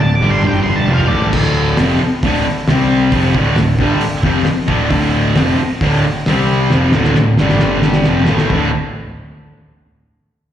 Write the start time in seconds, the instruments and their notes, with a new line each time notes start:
Already playing: picked electric bass D1
0.00 distorted electric guitar D2 A2, lead electric guitar A5
0.15 picked electric bass G1, lead electric guitar D6
0.21 distorted electric guitar G2 D3 G3, high tom
0.31 lead electric guitar C6
0.42 picked electric bass G1, distorted electric guitar G2 D3 G3, mid tom
0.47 lead electric guitar G5
0.55 mid tom
0.63 lead electric guitar C6, mid tom
0.76 lead electric guitar A5, mid tom
0.87 picked electric bass F1, distorted electric guitar F2 C3 F3, mid tom
0.94 lead electric guitar F5
0.99 floor tom
1.07 distorted electric guitar A2 E3 A3, lead electric guitar D5, floor tom
1.11 picked electric bass A1
1.22 floor tom
1.32 picked electric bass D1, distorted electric guitar D2 A2 D3, kick, crash
1.77 picked electric bass F1, distorted electric guitar F2 C3 F3, snare, open hi-hat
2.02 muted distorted electric guitar stroke
2.23 picked electric bass D1, distorted electric guitar D2 A2 D3, kick, open hi-hat
2.45 muted picked electric bass stroke, muted distorted electric guitar stroke
2.67 picked electric bass C2, distorted electric guitar C3 G3 C4, snare, open hi-hat
3.12 picked electric bass F1, distorted electric guitar F2 C3 F3, kick, open hi-hat
3.35 picked electric bass D1, distorted electric guitar D2 A2 D3, kick
3.56 picked electric bass D1, distorted electric guitar D2 A2, snare, open hi-hat
3.79 picked electric bass G1, distorted electric guitar G2 D3 G3, kick
4.00 muted picked electric bass stroke, muted distorted electric guitar stroke, open hi-hat
4.23 picked electric bass F1, distorted electric guitar F2 C3 F3, kick
4.45 snare, open hi-hat
4.67 picked electric bass D1, distorted electric guitar D2 A2 D3, kick
4.90 picked electric bass D1, distorted electric guitar D2 A2 D3, kick, open hi-hat
5.35 picked electric bass F1, distorted electric guitar F2 C3 F3, snare, open hi-hat
5.59 muted distorted electric guitar stroke
5.81 picked electric bass D1, distorted electric guitar D2 A2 D3, kick, open hi-hat
6.05 muted picked electric bass stroke, muted distorted electric guitar stroke
6.26 picked electric bass C2, distorted electric guitar C3 G3 C4, snare, open hi-hat
6.70 picked electric bass F1, distorted electric guitar F2 C3 F3, snare
6.92 picked electric bass D1, distorted electric guitar D2 A2 D3, snare
7.04 snare
7.14 picked electric bass D1, distorted electric guitar D2 A2, snare
7.37 picked electric bass G1, distorted electric guitar G2 D3 G3, snare
7.49 snare
7.59 picked electric bass G1, distorted electric guitar G2 D3 G3, snare
7.82 snare
7.93 snare
8.04 picked electric bass F1, distorted electric guitar F2 C3, snare
8.08 distorted electric guitar F3
8.26 picked electric bass A1, distorted electric guitar A2 E3, snare
8.31 distorted electric guitar A3
8.38 snare
8.50 picked electric bass D1, distorted electric guitar D2 A2 D3, kick